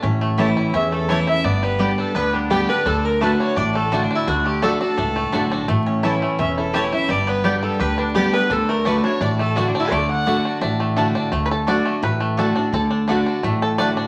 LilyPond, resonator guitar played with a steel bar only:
\new Staff \with { instrumentName = "Resonator guitar played with a steel bar" } { \time 4/4 \key d \major \tempo 4 = 170 r2 e''8 a'8 cis''8 e''8 | d''8 b'8 g'8 a'8 b'8 d'8 g'8 b'8 | a'8 bes'8 b'8 cis''8 d''8 a'8 \tuplet 3/2 { fis'8 d'8 e'8 } | fis'8 g'8 a'8 a'2~ a'8 |
r2 e''8 a'8 cis''8 e''8 | d''8 b'8 g'8 a'8 b'8 d'8 g'8 b'8 | a'8 bes'8 b'8 cis''8 d''8 a'8 \tuplet 3/2 { fis'8 d'8 e'8 } | d''8 fis''4. r2 |
r1 | r1 | }